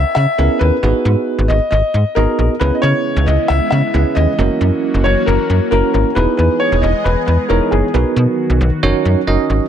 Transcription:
0.00 0.13 E5 loud
0.15 0.26 C#3 loud
0.15 0.57 E5 loud
0.39 0.49 C#2 medium
0.39 0.76 B3 medium
0.39 0.76 C#4 medium
0.39 0.76 E4 medium
0.39 0.76 G#4 medium
0.39 0.76 A#4 medium
0.59 0.71 D#2 medium
0.59 1.45 B4 loud
0.83 0.93 G#1 loud
0.83 1.58 B3 medium
0.83 1.58 D#4 medium
0.83 1.58 F#4 medium
0.83 1.58 G#4 medium
0.83 1.58 B4 medium
1.05 1.15 G#2 loud
1.39 1.49 G#1 loud
1.48 1.60 G#1 loud
1.48 1.69 D#5 loud
1.71 1.82 G#1 loud
1.71 2.17 D#5 loud
1.94 2.04 G#2 medium
2.15 2.27 G#1 loud
2.15 2.54 B3 medium
2.15 2.54 D#4 medium
2.15 2.54 F#4 medium
2.15 2.54 G#4 medium
2.15 2.62 A#4 medium
2.15 2.54 D#5 medium
2.39 2.49 A#1 medium
2.60 2.71 C#2 loud
2.60 4.37 C#3 medium
2.60 7.90 E3 medium
2.60 4.37 G#3 medium
2.60 4.37 B3 medium
2.60 3.36 B3 medium
2.60 3.36 C#4 medium
2.60 4.37 E4 medium
2.60 3.36 E4 medium
2.60 3.36 G#4 medium
2.60 2.76 B4 loud
2.60 3.36 B4 medium
2.75 2.82 D#5 medium
2.82 2.93 C#3 loud
2.82 3.24 C#5 loud
3.16 3.27 C#2 loud
3.26 3.38 C#2 loud
3.26 3.50 D#5 loud
3.48 3.60 C#2 loud
3.48 3.69 E5 loud
3.71 3.82 C#3 loud
3.71 4.17 E5 loud
3.94 4.04 C#2 loud
3.94 4.32 B3 medium
3.94 4.32 C#4 medium
3.94 4.32 E4 medium
3.94 4.32 G#4 medium
3.94 4.32 B4 medium
4.15 4.26 D#2 loud
4.15 5.07 D#5 loud
4.39 4.49 F#1 loud
4.39 6.15 F#3 medium
4.39 6.15 A#3 medium
4.39 5.13 A#3 medium
4.39 6.15 C#4 medium
4.39 5.13 C#4 medium
4.39 5.14 E4 medium
4.39 5.14 F#4 medium
4.39 6.15 F#4 medium
4.39 5.14 A#4 medium
4.61 4.71 F#2 loud
4.94 5.04 F#1 loud
5.04 5.15 F#1 loud
5.04 5.25 C#5 loud
5.26 5.38 F#1 loud
5.26 5.69 A#4 medium
5.50 5.60 F#2 loud
5.71 5.82 F#1 loud
5.71 6.09 A#3 medium
5.71 6.09 C#4 medium
5.71 6.09 E4 medium
5.71 6.09 F#4 medium
5.71 5.91 A#4 medium
5.71 6.09 A#4 medium
5.93 6.04 G#1 loud
5.93 6.14 A#4 medium
6.15 6.26 E1 loud
6.15 7.92 G#3 medium
6.15 6.91 B3 medium
6.15 8.80 B3 medium
6.15 6.91 D#4 medium
6.15 6.91 E4 medium
6.15 6.91 G#4 medium
6.15 7.92 G#4 medium
6.15 6.36 B4 loud
6.15 6.91 B4 medium
6.15 7.92 D#5 medium
6.37 6.49 E2 medium
6.37 6.61 B4 medium
6.60 6.83 C#5 medium
6.72 6.82 E1 loud
6.82 6.93 E1 loud
6.82 7.05 D#5 loud
7.04 7.15 E1 loud
7.04 7.25 B4 loud
7.26 7.38 E2 medium
7.26 7.50 B4 medium
7.49 7.60 E1 loud
7.49 7.87 B3 medium
7.49 7.87 D#4 medium
7.49 7.87 E4 medium
7.49 7.87 G#4 medium
7.49 7.72 A#4 medium
7.49 7.87 C#5 medium
7.71 7.82 F#1 medium
7.71 8.56 G#4 medium
7.94 8.04 B1 loud
7.94 9.69 D#3 medium
7.94 8.82 F#3 medium
7.94 8.69 B3 medium
7.94 8.69 D#4 medium
7.94 8.69 F#4 medium
7.94 9.69 F#4 medium
7.94 8.69 A#4 medium
7.94 8.69 B4 medium
8.16 8.26 B2 loud
8.50 8.60 B1 loud
8.61 8.71 B1 loud
8.83 8.93 F#1 loud
8.83 9.69 F#3 medium
8.83 9.21 C#4 loud
8.83 9.69 C#4 medium
8.83 9.20 D#4 medium
8.83 9.20 F#4 medium
8.83 9.21 A#4 medium
8.83 9.20 C#5 loud
9.05 9.15 F#2 loud
9.27 9.38 F#1 medium
9.27 9.65 C#4 medium
9.27 9.65 D#4 medium
9.27 9.65 F#4 medium
9.27 9.65 A#4 medium
9.27 9.65 D#5 loud
9.50 9.60 G#1 medium

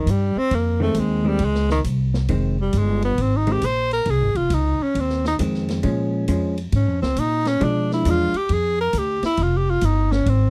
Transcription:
0.00 0.12 D#3 medium
0.06 0.34 G2 medium
0.06 kick soft
0.06 hi-hat pedal medium
0.06 ride medium
0.11 0.40 G3 medium
0.36 0.56 C4 loud
0.36 muted upright bass stroke soft
0.51 0.94 F2 medium
0.51 0.82 A#3 medium
0.51 kick soft
0.51 ride medium
0.80 1.22 D#3 medium
0.80 1.23 G#3 medium
0.80 1.01 A3 medium
0.80 1.23 C4 medium
0.94 1.39 D#2 medium
0.94 kick soft
0.94 hi-hat pedal medium
0.94 ride medium
0.99 1.30 G#3 medium
1.24 1.39 D#3 medium
1.24 1.46 G3 medium
1.24 1.39 G#3 medium
1.24 1.39 C4 medium
1.39 1.83 C#2 medium
1.39 kick soft
1.39 ride medium
1.45 1.71 G#3 loud
1.55 snare soft
1.70 1.80 D#3 medium
1.70 snare soft
1.84 2.28 C2 medium
1.84 kick soft
1.84 hi-hat pedal medium
1.84 ride medium
2.14 snare soft
2.28 2.72 F1 medium
2.28 2.56 D#3 medium
2.28 2.56 G#3 medium
2.28 2.56 C4 medium
2.28 kick soft
2.28 ride medium
2.61 2.79 G3 medium
2.73 3.17 G1 medium
2.73 kick soft
2.73 hi-hat pedal medium
2.73 ride medium
2.78 3.04 G#3 medium
3.02 3.23 B3 medium
3.02 ride soft
3.18 3.61 G#1 medium
3.18 3.38 C4 medium
3.18 kick soft
3.18 ride medium
3.37 3.53 D#4 medium
3.47 3.61 D#3 medium
3.47 3.61 G#3 medium
3.47 3.61 C4 medium
3.47 ride soft
3.52 3.67 G4 medium
3.62 4.05 A#1 medium
3.62 3.92 C5 loud
3.62 kick soft
3.62 hi-hat pedal medium
3.62 ride medium
3.91 4.12 A#4 loud
3.91 ride soft
4.05 4.20 C2 medium
4.05 kick soft
4.05 ride medium
4.10 4.38 G#4 medium
4.20 4.34 G#1 medium
4.35 4.49 F1 medium
4.35 4.55 F4 medium
4.35 ride soft
4.50 4.78 C#2 medium
4.50 4.84 D#4 medium
4.50 kick soft
4.50 hi-hat pedal medium
4.50 ride medium
4.79 5.01 C#4 medium
4.79 muted upright bass stroke soft
4.95 5.38 D#2 medium
4.95 kick soft
4.95 ride medium
5.00 5.27 C4 medium
5.09 snare soft
5.25 5.36 D#4 medium
5.25 snare soft
5.39 5.82 F2 medium
5.39 5.83 D#3 medium
5.39 5.82 G#3 medium
5.39 5.83 C4 medium
5.39 kick soft
5.39 hi-hat pedal medium
5.39 ride medium
5.54 snare soft
5.69 snare soft
5.69 ride soft
5.83 6.27 A#2 medium
5.83 6.26 F3 medium
5.83 6.26 G#3 medium
5.83 6.26 C#4 medium
5.83 kick soft
5.83 ride medium
6.28 6.71 F2 medium
6.28 6.55 F3 soft
6.28 6.55 G#3 medium
6.28 6.55 C#4 medium
6.28 kick soft
6.28 hi-hat pedal medium
6.28 ride medium
6.57 ride soft
6.72 6.87 G#2 medium
6.72 7.01 C#4 medium
6.72 kick soft
6.72 ride medium
6.87 7.02 F2 medium
7.02 7.15 C#2 medium
7.02 7.21 C4 medium
7.02 snare medium
7.16 7.59 A#2 medium
7.16 7.50 D#4 loud
7.16 kick soft
7.16 hi-hat pedal medium
7.16 ride medium
7.45 7.66 C#4 loud
7.45 snare soft
7.45 ride soft
7.60 8.04 B2 medium
7.60 8.03 F3 medium
7.60 8.04 G#3 medium
7.60 8.04 D4 medium
7.60 7.92 D4 medium
7.60 kick soft
7.60 ride medium
7.91 8.11 E4 medium
7.91 snare soft
8.05 8.32 E2 loud
8.05 8.32 F3 medium
8.05 8.32 G#3 medium
8.05 8.32 D4 medium
8.05 kick soft
8.05 hi-hat pedal medium
8.05 ride medium
8.10 8.39 F4 medium
8.34 8.54 G4 medium
8.34 muted upright bass stroke soft
8.34 ride medium
8.49 8.92 F2 medium
8.49 8.80 G#4 medium
8.49 kick soft
8.49 ride medium
8.81 8.99 A#4 loud
8.93 9.21 D2 medium
8.93 kick soft
8.93 hi-hat pedal medium
8.93 ride medium
8.98 9.25 G4 medium
9.22 9.44 E4 loud
9.22 muted upright bass stroke soft
9.22 snare medium
9.22 ride soft
9.37 9.81 F1 medium
9.37 kick soft
9.37 ride medium
9.43 9.58 F4 medium
9.57 9.72 G4 medium
9.70 9.86 F4 medium
9.81 10.25 G1 medium
9.81 10.13 D#4 medium
9.81 kick soft
9.81 hi-hat pedal medium
9.81 ride medium
10.12 10.31 C#4 medium
10.12 snare medium
10.26 10.50 G#1 medium
10.26 10.50 C4 medium
10.26 kick soft
10.26 ride medium

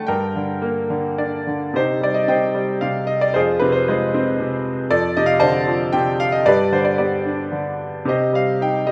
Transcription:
0.00 0.11 D3 medium
0.00 0.11 A3 medium
0.00 0.11 F#4 soft
0.00 0.10 A4 medium
0.00 0.11 F#5 medium
0.00 0.07 G5 medium
0.00 0.10 A5 loud
0.07 1.71 G2 medium
0.07 1.14 A#4 soft
0.07 1.14 G5 medium
0.35 0.88 D3 soft
0.62 1.72 A#3 medium
0.90 1.46 D3 soft
1.18 1.73 D4 soft
1.18 1.71 D5 medium
1.47 1.74 D3 soft
1.74 2.26 C3 soft
1.74 2.53 D#4 soft
1.74 2.52 G4 soft
1.74 2.03 C5 medium
2.01 2.53 G3 soft
2.01 2.16 D5 medium
2.14 2.28 D#5 medium
2.28 2.81 C3 soft
2.28 3.06 C5 soft
2.28 3.05 D#5 soft
2.28 2.79 G5 medium
2.54 3.33 G3 soft
2.81 3.34 C3 soft
2.81 3.10 F5 medium
3.07 3.22 D#5 medium
3.21 3.34 D5 medium
3.34 4.86 F2 medium
3.34 3.89 F4 medium
3.34 3.89 G#4 medium
3.34 3.59 C5 medium
3.59 4.39 C3 soft
3.59 3.74 B4 medium
3.72 3.86 C5 medium
3.88 4.87 G#3 soft
3.88 4.62 F4 soft
3.88 4.62 G#4 soft
3.88 4.36 C5 medium
4.14 4.88 C4 soft
4.40 4.89 C3 soft
4.90 6.42 F2 medium
4.90 5.63 A4 medium
4.90 5.16 D5 medium
5.17 5.92 C3 soft
5.17 5.29 D#5 medium
5.26 5.40 F5 medium
5.40 6.43 D3 soft
5.40 6.14 C5 medium
5.40 6.15 D5 medium
5.40 5.88 A5 medium
5.67 6.43 F3 medium
5.93 6.44 C3 medium
5.93 6.17 G5 medium
6.20 6.33 F5 medium
6.32 6.46 D#5 medium
6.46 8.02 G2 medium
6.46 6.98 G4 medium
6.46 6.98 B4 medium
6.46 6.73 D5 medium
6.72 7.50 D3 soft
6.72 6.86 C5 medium
6.85 6.97 D5 medium
6.98 8.02 B3 soft
6.98 7.75 G4 soft
6.98 7.75 B4 soft
6.98 7.48 D5 medium
7.25 8.03 D4 soft
7.52 8.04 D3 soft
8.05 8.92 C3 soft
8.05 8.84 G4 soft
8.05 8.84 C5 soft
8.05 8.33 D#5 medium
8.33 8.85 G3 soft
8.33 8.62 F5 medium
8.60 8.92 D#4 soft
8.60 8.87 G5 medium
8.87 8.92 G3 soft
8.87 8.92 D#5 medium

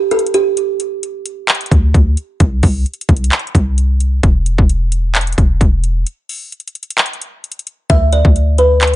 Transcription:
0.11 0.32 A4 medium
0.11 closed hi-hat medium
0.19 closed hi-hat medium
0.27 closed hi-hat medium
0.34 0.55 G4 medium
0.34 closed hi-hat medium
0.57 closed hi-hat medium
0.80 closed hi-hat medium
1.03 closed hi-hat medium
1.26 closed hi-hat medium
1.48 clap loud
1.48 closed hi-hat medium
1.55 closed hi-hat medium
1.61 closed hi-hat medium
1.66 closed hi-hat medium
1.71 1.93 D2 loud
1.71 kick loud
1.71 closed hi-hat medium
1.94 2.16 D2 loud
1.94 kick loud
1.94 closed hi-hat medium
2.17 closed hi-hat medium
2.40 2.62 C2 loud
2.40 kick loud
2.40 closed hi-hat medium
2.63 2.85 C2 loud
2.63 kick medium
2.63 open hi-hat medium
2.86 closed hi-hat soft
2.94 closed hi-hat soft
3.01 closed hi-hat medium
3.09 3.31 C2 loud
3.09 kick medium
3.09 closed hi-hat medium
3.17 closed hi-hat medium
3.24 closed hi-hat medium
3.32 clap loud
3.32 closed hi-hat soft
3.39 closed hi-hat soft
3.47 closed hi-hat soft
3.55 4.21 C2 loud
3.55 kick medium
3.55 closed hi-hat medium
3.78 closed hi-hat medium
4.00 closed hi-hat medium
4.23 4.57 E1 loud
4.23 kick loud
4.23 closed hi-hat medium
4.46 closed hi-hat medium
4.58 5.35 E1 loud
4.58 kick loud
4.69 closed hi-hat medium
4.92 closed hi-hat medium
5.15 clap loud
5.15 closed hi-hat medium
5.21 closed hi-hat medium
5.27 closed hi-hat medium
5.33 closed hi-hat medium
5.38 5.60 E1 loud
5.38 kick loud
5.38 closed hi-hat medium
5.61 6.05 E1 loud
5.61 kick loud
5.61 closed hi-hat medium
5.84 closed hi-hat medium
6.07 closed hi-hat medium
6.29 open hi-hat medium
6.52 closed hi-hat soft
6.60 closed hi-hat soft
6.68 closed hi-hat medium
6.75 closed hi-hat medium
6.83 closed hi-hat medium
6.90 closed hi-hat medium
6.98 clap loud
6.98 closed hi-hat medium
7.06 closed hi-hat medium
7.13 closed hi-hat soft
7.22 closed hi-hat medium
7.44 closed hi-hat medium
7.52 closed hi-hat medium
7.59 closed hi-hat medium
7.67 closed hi-hat medium
7.90 8.23 D2 loud
7.90 8.10 E5 loud
7.90 kick loud
7.90 closed hi-hat medium
8.12 8.33 D5 medium
8.12 closed hi-hat medium
8.25 8.96 D2 loud
8.25 kick loud
8.36 closed hi-hat medium
8.58 8.96 B4 medium
8.58 closed hi-hat medium
8.81 clap loud
8.81 closed hi-hat medium
8.87 closed hi-hat medium

